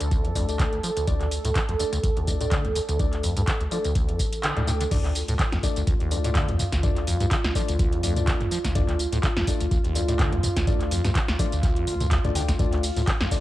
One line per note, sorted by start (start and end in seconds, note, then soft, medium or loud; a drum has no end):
0.00 0.09 D2 loud
0.00 4.92 A4 medium
0.00 closed hi-hat medium
0.00 tambourine soft
0.11 0.30 A1 medium
0.11 0.26 D2 medium
0.11 kick loud
0.11 closed hi-hat medium
0.11 tambourine soft
0.24 0.33 F2 medium
0.24 closed hi-hat soft
0.35 0.67 D2 loud
0.35 0.46 F2 medium
0.35 0.47 A3 medium
0.35 0.47 D4 medium
0.35 0.47 D5 medium
0.35 kick medium
0.35 open hi-hat loud
0.35 tambourine medium
0.49 0.70 A3 medium
0.49 0.70 D4 medium
0.49 0.70 D5 medium
0.49 closed hi-hat medium
0.49 tambourine soft
0.59 0.64 D3 loud
0.59 kick loud
0.59 clap loud
0.59 closed hi-hat medium
0.59 tambourine soft
0.73 0.78 D2 medium
0.73 0.81 D2 loud
0.73 closed hi-hat soft
0.83 0.91 F3 medium
0.83 open hi-hat medium
0.83 tambourine medium
0.97 1.05 D2 medium
0.97 closed hi-hat medium
0.97 tambourine soft
1.07 1.39 D2 loud
1.07 1.29 A3 medium
1.07 1.29 D4 medium
1.07 1.29 D5 medium
1.07 kick loud
1.07 closed hi-hat medium
1.07 tambourine soft
1.21 1.26 D2 medium
1.21 clap soft
1.21 closed hi-hat soft
1.31 open hi-hat loud
1.31 tambourine medium
1.45 1.53 D2 loud
1.45 1.51 A2 medium
1.45 closed hi-hat medium
1.45 tambourine soft
1.55 1.60 D3 loud
1.55 kick loud
1.55 clap loud
1.55 closed hi-hat medium
1.55 tambourine soft
1.69 1.77 D2 loud
1.69 1.74 F2 medium
1.69 closed hi-hat soft
1.79 1.84 D#2 medium
1.79 1.94 A3 loud
1.79 1.94 D4 medium
1.79 1.94 D5 loud
1.79 open hi-hat medium
1.79 tambourine medium
1.93 1.98 D2 loud
1.93 closed hi-hat medium
1.93 tambourine soft
2.03 2.22 A1 medium
2.03 2.11 D2 medium
2.03 kick loud
2.03 closed hi-hat medium
2.03 tambourine soft
2.17 2.29 D#2 medium
2.17 closed hi-hat soft
2.27 2.59 D2 loud
2.27 2.35 F2 medium
2.27 2.39 A3 medium
2.27 2.39 D4 medium
2.27 2.39 D5 medium
2.27 kick medium
2.27 open hi-hat loud
2.27 tambourine medium
2.41 2.47 A2 medium
2.41 2.62 A3 medium
2.41 2.62 D4 medium
2.41 2.62 D5 medium
2.41 closed hi-hat medium
2.41 tambourine soft
2.51 2.66 D3 loud
2.51 kick loud
2.51 clap loud
2.51 closed hi-hat medium
2.51 tambourine soft
2.65 2.73 D2 loud
2.65 2.74 D2 medium
2.65 closed hi-hat soft
2.75 2.80 D#2 medium
2.75 open hi-hat medium
2.75 tambourine medium
2.89 2.97 D2 loud
2.89 closed hi-hat medium
2.89 tambourine soft
2.99 3.31 D2 loud
2.99 3.07 D2 medium
2.99 3.21 A3 medium
2.99 3.21 D4 medium
2.99 3.21 D5 medium
2.99 kick loud
2.99 closed hi-hat medium
2.99 tambourine soft
3.13 clap soft
3.13 closed hi-hat soft
3.23 3.34 F2 medium
3.23 open hi-hat loud
3.23 tambourine medium
3.37 3.44 D2 medium
3.37 3.43 G2 loud
3.37 closed hi-hat medium
3.37 tambourine soft
3.47 3.52 D3 loud
3.47 kick loud
3.47 clap loud
3.47 closed hi-hat medium
3.47 tambourine soft
3.60 3.64 C2 medium
3.60 3.69 D2 loud
3.60 closed hi-hat soft
3.71 3.79 F3 medium
3.71 3.86 A3 loud
3.71 3.86 D4 medium
3.71 3.86 D5 loud
3.71 open hi-hat medium
3.71 tambourine medium
3.85 3.93 D2 loud
3.85 closed hi-hat medium
3.85 tambourine soft
3.95 4.14 A1 medium
3.95 4.10 D2 medium
3.95 kick loud
3.95 closed hi-hat medium
3.95 tambourine soft
4.08 4.21 F2 medium
4.08 closed hi-hat soft
4.19 4.27 D1 medium
4.19 4.51 A1 medium
4.19 kick medium
4.19 open hi-hat loud
4.19 tambourine medium
4.33 closed hi-hat medium
4.33 tambourine soft
4.43 4.54 D3 medium
4.43 clap loud
4.43 closed hi-hat medium
4.43 tambourine soft
4.57 4.87 D2 loud
4.57 4.63 A2 loud
4.57 4.66 A3 medium
4.57 4.66 D4 medium
4.57 4.66 D5 loud
4.57 closed hi-hat soft
4.67 4.72 A2 loud
4.67 4.82 A3 loud
4.67 4.82 D4 medium
4.67 4.82 G5 loud
4.67 open hi-hat medium
4.67 tambourine medium
4.81 4.84 D3 medium
4.81 closed hi-hat medium
4.81 tambourine soft
4.91 4.99 D2 medium
4.91 5.23 D2 loud
4.91 5.13 A3 medium
4.91 5.13 D4 medium
4.91 13.40 F4 medium
4.91 5.13 D5 medium
4.91 kick loud
4.91 closed hi-hat medium
4.91 mid tom medium
4.91 crash loud
4.91 tambourine soft
5.04 5.10 D2 medium
5.04 clap soft
5.04 closed hi-hat soft
5.15 open hi-hat loud
5.15 tambourine medium
5.28 5.36 D2 loud
5.28 5.34 A2 medium
5.28 closed hi-hat medium
5.28 tambourine soft
5.39 5.44 D3 loud
5.39 kick loud
5.39 clap loud
5.39 closed hi-hat medium
5.39 tambourine soft
5.52 5.60 D2 loud
5.52 5.58 F2 medium
5.52 snare medium
5.52 closed hi-hat soft
5.63 5.68 D#2 medium
5.63 5.78 A3 loud
5.63 5.78 D4 medium
5.63 5.78 D5 loud
5.63 kick medium
5.63 open hi-hat loud
5.63 tambourine medium
5.76 5.82 D2 loud
5.76 closed hi-hat medium
5.76 tambourine soft
5.87 6.06 A1 medium
5.87 5.95 D2 medium
5.87 kick loud
5.87 closed hi-hat medium
5.87 tambourine soft
6.00 6.13 D#2 medium
6.00 closed hi-hat soft
6.11 6.43 D2 loud
6.11 6.19 F2 medium
6.11 6.22 A3 medium
6.11 6.22 D4 medium
6.11 6.22 D5 medium
6.11 open hi-hat loud
6.11 tambourine medium
6.24 6.30 A2 medium
6.24 6.46 A3 medium
6.24 6.46 D4 medium
6.24 6.46 D5 loud
6.24 closed hi-hat medium
6.24 tambourine soft
6.35 6.50 D3 loud
6.35 kick loud
6.35 clap loud
6.35 closed hi-hat medium
6.35 mid tom medium
6.35 tambourine soft
6.48 6.56 D2 loud
6.48 6.57 D2 medium
6.48 closed hi-hat soft
6.48 mid tom medium
6.59 6.64 D#2 medium
6.59 mid tom medium
6.59 open hi-hat loud
6.59 tambourine medium
6.72 6.81 D2 loud
6.72 kick medium
6.72 snare medium
6.72 closed hi-hat medium
6.72 tambourine soft
6.83 7.15 D2 loud
6.83 6.91 D2 medium
6.83 7.05 A3 medium
6.83 7.05 D4 medium
6.83 7.05 D5 loud
6.83 kick loud
6.83 closed hi-hat medium
6.83 mid tom loud
6.83 tambourine soft
6.96 clap soft
6.96 closed hi-hat soft
7.07 7.18 F2 medium
7.07 open hi-hat loud
7.07 tambourine medium
7.20 7.28 D2 loud
7.20 7.26 G2 loud
7.20 closed hi-hat medium
7.20 tambourine soft
7.31 7.36 D3 loud
7.31 kick loud
7.31 clap loud
7.31 closed hi-hat medium
7.31 tambourine soft
7.44 7.48 C2 medium
7.44 7.52 D2 loud
7.44 snare medium
7.44 closed hi-hat soft
7.55 7.63 F3 medium
7.55 7.70 A3 loud
7.55 7.70 D4 medium
7.55 7.70 D5 loud
7.55 kick medium
7.55 open hi-hat loud
7.55 tambourine medium
7.68 7.77 D2 loud
7.68 closed hi-hat medium
7.68 tambourine soft
7.79 7.98 A1 medium
7.79 7.94 D2 medium
7.79 kick loud
7.79 closed hi-hat medium
7.79 tambourine soft
7.92 8.01 F2 medium
7.92 closed hi-hat soft
8.03 8.35 D2 loud
8.03 8.14 F2 medium
8.03 8.15 A3 medium
8.03 8.15 D4 medium
8.03 8.15 D5 medium
8.03 open hi-hat loud
8.03 tambourine medium
8.16 8.38 A3 medium
8.16 8.38 D4 medium
8.16 8.38 D5 medium
8.16 closed hi-hat medium
8.16 mid tom loud
8.16 tambourine soft
8.27 8.32 D3 loud
8.27 kick loud
8.27 clap loud
8.27 closed hi-hat medium
8.27 tambourine soft
8.40 8.48 D2 loud
8.40 8.46 D2 medium
8.40 closed hi-hat soft
8.40 mid tom loud
8.51 8.59 F3 medium
8.51 open hi-hat loud
8.51 tambourine medium
8.64 8.73 D2 medium
8.64 kick medium
8.64 snare medium
8.64 closed hi-hat medium
8.64 tambourine soft
8.75 8.83 D2 medium
8.75 9.07 D2 loud
8.75 8.97 A3 medium
8.75 8.97 D4 medium
8.75 8.97 D5 loud
8.75 kick loud
8.75 closed hi-hat medium
8.75 mid tom loud
8.75 tambourine soft
8.88 8.94 D2 medium
8.88 clap soft
8.88 closed hi-hat soft
8.99 open hi-hat loud
8.99 tambourine medium
9.12 9.21 D2 loud
9.12 9.18 A2 medium
9.12 closed hi-hat medium
9.12 tambourine soft
9.23 9.28 D3 loud
9.23 kick loud
9.23 clap loud
9.23 closed hi-hat medium
9.23 tambourine soft
9.36 9.45 D2 loud
9.36 9.42 F2 medium
9.36 snare medium
9.36 closed hi-hat soft
9.47 9.52 D#2 medium
9.47 9.62 A3 loud
9.47 9.62 D4 medium
9.47 9.62 D5 loud
9.47 kick medium
9.47 open hi-hat loud
9.47 tambourine medium
9.60 9.66 D2 loud
9.60 closed hi-hat medium
9.60 tambourine soft
9.71 9.90 A1 medium
9.71 9.79 D2 medium
9.71 kick loud
9.71 closed hi-hat medium
9.71 tambourine soft
9.84 9.97 D#2 medium
9.84 closed hi-hat soft
9.95 10.27 D2 loud
9.95 10.02 F2 medium
9.95 10.07 A3 medium
9.95 10.07 D4 medium
9.95 10.07 D5 medium
9.95 open hi-hat loud
9.95 tambourine medium
10.08 10.14 A2 medium
10.08 10.30 A3 medium
10.08 10.30 D4 medium
10.08 10.30 D5 loud
10.08 closed hi-hat medium
10.08 tambourine soft
10.19 10.34 D3 loud
10.19 kick loud
10.19 clap loud
10.19 closed hi-hat medium
10.19 mid tom loud
10.19 tambourine soft
10.32 10.41 D2 medium
10.32 10.41 D2 loud
10.32 closed hi-hat soft
10.32 mid tom loud
10.43 10.48 D#2 medium
10.43 mid tom loud
10.43 open hi-hat loud
10.43 tambourine medium
10.56 10.65 D2 loud
10.56 kick medium
10.56 snare medium
10.56 closed hi-hat medium
10.56 tambourine soft
10.67 10.99 D2 medium
10.67 10.89 A3 medium
10.67 10.89 D4 medium
10.67 10.89 D5 loud
10.67 kick loud
10.67 closed hi-hat medium
10.67 mid tom loud
10.67 tambourine soft
10.81 clap soft
10.81 closed hi-hat soft
10.91 11.02 F2 medium
10.91 open hi-hat loud
10.91 tambourine medium
11.04 11.13 D2 loud
11.04 11.10 G2 loud
11.04 snare medium
11.04 closed hi-hat medium
11.04 tambourine soft
11.15 11.20 D3 loud
11.15 kick loud
11.15 clap loud
11.15 closed hi-hat medium
11.15 tambourine soft
11.28 11.32 C2 medium
11.28 11.37 D2 loud
11.28 snare medium
11.28 closed hi-hat soft
11.39 11.47 F3 medium
11.39 11.54 A3 loud
11.39 11.54 D4 medium
11.39 11.54 D5 loud
11.39 kick medium
11.39 open hi-hat loud
11.39 tambourine medium
11.52 11.61 D2 loud
11.52 closed hi-hat soft
11.52 tambourine soft
11.63 11.82 A1 medium
11.63 11.78 D2 medium
11.63 kick loud
11.63 clap soft
11.63 closed hi-hat medium
11.63 tambourine soft
11.76 11.85 F2 medium
11.76 closed hi-hat soft
11.87 11.95 D2 medium
11.87 12.19 D2 loud
11.87 open hi-hat loud
11.87 tambourine medium
12.00 12.06 D2 medium
12.00 closed hi-hat medium
12.00 mid tom medium
12.00 tambourine soft
12.11 12.19 D2 medium
12.11 kick loud
12.11 clap loud
12.11 closed hi-hat medium
12.11 tambourine soft
12.24 12.55 D2 loud
12.24 12.30 D2 loud
12.24 12.34 A3 medium
12.24 12.34 D4 medium
12.24 12.34 D5 loud
12.24 closed hi-hat soft
12.24 mid tom loud
12.35 12.43 D3 medium
12.35 12.50 A3 loud
12.35 12.50 D4 medium
12.35 12.50 G5 loud
12.35 open hi-hat loud
12.35 tambourine medium
12.48 12.52 D2 medium
12.48 kick medium
12.48 snare medium
12.48 closed hi-hat medium
12.48 tambourine soft
12.59 12.91 D2 loud
12.59 12.67 D2 medium
12.59 12.81 A3 medium
12.59 12.81 D4 medium
12.59 12.81 D5 loud
12.59 kick loud
12.59 closed hi-hat soft
12.59 mid tom medium
12.59 tambourine soft
12.73 12.78 D2 medium
12.73 clap soft
12.73 closed hi-hat soft
12.83 open hi-hat loud
12.83 ride medium
12.83 tambourine medium
12.96 13.04 D2 loud
12.96 13.02 A2 medium
12.96 closed hi-hat medium
12.96 tambourine soft
13.07 13.12 D3 loud
13.07 kick loud
13.07 clap loud
13.07 closed hi-hat medium
13.07 tambourine soft
13.21 13.29 D2 loud
13.21 13.26 F2 medium
13.21 snare medium
13.21 closed hi-hat soft
13.31 13.36 D#2 medium
13.31 13.40 A3 loud
13.31 13.40 D4 medium
13.31 13.40 D5 loud
13.31 kick medium
13.31 open hi-hat loud
13.31 ride medium
13.31 tambourine medium